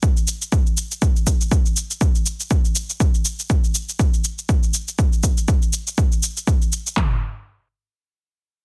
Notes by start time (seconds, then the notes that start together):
0.03 kick, shaker
0.17 shaker
0.28 shaker
0.42 shaker
0.52 kick, shaker
0.67 shaker
0.77 shaker
0.91 shaker
1.02 kick, shaker
1.16 shaker
1.27 kick, shaker
1.41 shaker
1.52 kick, shaker
1.66 shaker
1.77 shaker
1.91 shaker
2.01 kick, shaker
2.15 shaker
2.26 shaker
2.40 shaker
2.51 kick, shaker
2.65 shaker
2.75 shaker
2.90 shaker
3.00 kick, shaker
3.14 shaker
3.25 shaker
3.39 shaker
3.50 kick, shaker
3.64 shaker
3.75 shaker
3.89 shaker
3.99 kick, shaker
4.14 shaker
4.24 shaker
4.38 shaker
4.49 kick, shaker
4.63 shaker
4.74 shaker
4.88 shaker
4.99 kick, shaker
5.13 shaker
5.23 kick, shaker
5.38 shaker
5.48 kick, shaker
5.62 shaker
5.73 shaker
5.87 shaker
5.98 kick, shaker
6.12 shaker
6.23 shaker
6.37 shaker
6.47 kick, shaker
6.62 shaker
6.73 shaker
6.87 shaker
6.97 kick, clap, floor tom